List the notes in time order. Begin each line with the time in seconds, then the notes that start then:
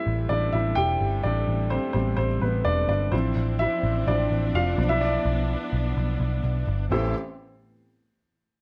Already playing: C3 G3 A3 C4 E4 C5 E5
0.07 A1
0.29 A1 D4 D5
0.52 A1 E4 E5
0.75 E1 G4 G5
1.01 G1
1.23 A1 D4 D5
1.47 A1
1.70 C4 C5
1.93 A1 G3 B3 C4 C5
2.17 A1 C4 C5
2.41 A1 B3 B4
2.65 E1 D4 D5
2.89 G1 D4 D5
3.12 A1 F3 C4 D4 E4 C5
3.36 A1
3.59 E4 E5
3.83 A1
4.07 A1 F3 C4 D4 E4 D5
4.31 A1
4.54 F1 F4 F5
4.77 B1 F3 B3 D4
4.89 E4 E5
5.01 D4 D5
5.25 B1
5.73 B1
5.97 B1
6.20 B1
6.44 B1
6.67 G1
6.90 A1 A2 E3 B3 C4 E4 G4 A4 C5